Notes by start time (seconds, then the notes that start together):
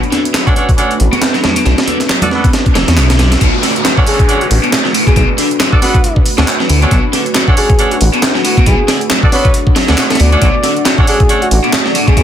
Already playing: A3 D4 F#4 B4, riser
0.03 closed hi-hat
0.12 D3, snare, closed hi-hat, high conga
0.25 closed hi-hat
0.34 F#3, snare, clap, closed hi-hat
0.47 C#4 D4 F#4 A4 C#5, kick, closed hi-hat
0.56 C#4 D4 F#4 A4 C#5, closed hi-hat
0.69 kick, closed hi-hat
0.78 C#4 D4 F#4 A4 C#5, closed hi-hat
0.91 closed hi-hat
1.00 A1, closed hi-hat
1.13 B2, closed hi-hat, high conga
1.22 snare, clap, closed hi-hat
1.34 F#3, snare, closed hi-hat
1.44 A2, snare, low conga
1.56 B2, closed hi-hat
1.66 B1 B2, snare, closed hi-hat
1.78 snare, closed hi-hat
1.87 D3, closed hi-hat, high conga
2.00 snare, closed hi-hat
2.09 F#3, snare, clap, closed hi-hat
2.22 D4 F#4 A4 D5, closed hi-hat, low conga
2.31 B3 D4 F#4 A4 B4, snare
2.44 kick, closed hi-hat, high conga
2.53 snare, closed hi-hat
2.66 kick, closed hi-hat
2.75 F#1 E3, snare, closed hi-hat
2.88 E2 B2, snare, closed hi-hat
2.97 B1 B2, snare, clap, closed hi-hat
3.10 D3, snare, closed hi-hat, high conga
3.19 D3, snare, closed hi-hat, low conga
3.32 D3, snare, closed hi-hat
3.41 B1 B2 A3 D4 F#4 B4, kick, closed hi-hat, downlifter
3.63 D3, snare, closed hi-hat, open hi-hat
3.76 closed hi-hat
3.85 F#3, snare, clap, closed hi-hat
3.97 C#4 D4 F#4 A4 C#5, kick
4.07 C#4 D4 F#4 G#4 A4 C#5, closed hi-hat, open hi-hat
4.19 kick, closed hi-hat
4.29 C#4 D4 F#4 A4 C#5, closed hi-hat
4.41 F#4, closed hi-hat
4.51 A1 F#4, closed hi-hat, open hi-hat
4.63 B2, closed hi-hat
4.72 snare, clap, closed hi-hat
4.85 F#3, snare
4.94 A2, closed hi-hat, open hi-hat
5.07 B2 G#4, kick, closed hi-hat
5.16 B1 B2 G#4, kick, closed hi-hat
5.38 D3, closed hi-hat, open hi-hat
5.51 closed hi-hat
5.60 F#3, snare, clap, closed hi-hat
5.73 D4 F#4 A4 D5, kick
5.82 B3 D4 F#4 A4 B4, snare, closed hi-hat, open hi-hat
5.94 kick, closed hi-hat
6.04 closed hi-hat
6.16 kick
6.26 closed hi-hat, open hi-hat
6.38 D2 B2 C#4 D4 F#4 A4 C#5, snare
6.47 clap, closed hi-hat
6.60 F#3, snare
6.69 D2 A2, closed hi-hat, open hi-hat
6.82 B2 C#4 D4 F#4 A4 C#5, closed hi-hat
6.91 B1 B2, kick, closed hi-hat
7.13 D3, snare, closed hi-hat, open hi-hat
7.26 closed hi-hat
7.35 F#3, snare, clap, closed hi-hat
7.48 C#4 D4 F#4 A4 C#5, kick
7.57 C#4 D4 F#4 G#4 A4 C#5, closed hi-hat, open hi-hat
7.70 kick, closed hi-hat
7.79 C#4 D4 F#4 A4 C#5, closed hi-hat
7.91 F#4, closed hi-hat
8.01 A1 F#4, closed hi-hat, open hi-hat
8.13 B2, closed hi-hat
8.23 snare, clap, closed hi-hat
8.35 F#3, snare
8.45 A2 F#4, closed hi-hat, open hi-hat
8.57 B2, kick, closed hi-hat
8.66 B1 B2 G#4, kick, closed hi-hat
8.88 D3, snare, closed hi-hat, open hi-hat
9.01 closed hi-hat
9.10 F#3, snare, clap, closed hi-hat
9.23 D4 F#4 A4 D5, kick
9.32 B3 D4 F#4 A4 B4 C#5, snare, closed hi-hat, open hi-hat
9.45 kick, closed hi-hat
9.54 closed hi-hat
9.67 kick
9.76 F#3, snare, closed hi-hat, open hi-hat
9.88 D2 B2 C#4 D4 F#4 A4 C#5, snare, closed hi-hat
9.98 snare, clap, closed hi-hat
10.10 A3, snare, closed hi-hat
10.15 snare, closed hi-hat
10.20 D2 B2 D5, closed hi-hat, open hi-hat
10.32 A2 C#4 D4 F#4 A4 C#5, closed hi-hat
10.42 B1 B2 D5, kick, closed hi-hat
10.64 D3, snare, closed hi-hat, open hi-hat
10.77 closed hi-hat
10.85 F#3, snare, clap, closed hi-hat
10.98 C#4 D4 F#4 A4 C#5, kick
11.07 C#4 D4 F#4 G#4 A4 C#5, closed hi-hat, open hi-hat
11.20 kick, closed hi-hat
11.29 C#4 D4 F#4 A4 C#5, closed hi-hat
11.42 F#4, closed hi-hat
11.51 A1 F#4, closed hi-hat, open hi-hat
11.64 B2, closed hi-hat
11.73 snare, clap, closed hi-hat
11.86 F#3, snare
11.95 A2, closed hi-hat, open hi-hat
12.08 B2 G#4, kick, closed hi-hat
12.17 B1 B2 G#4, kick, closed hi-hat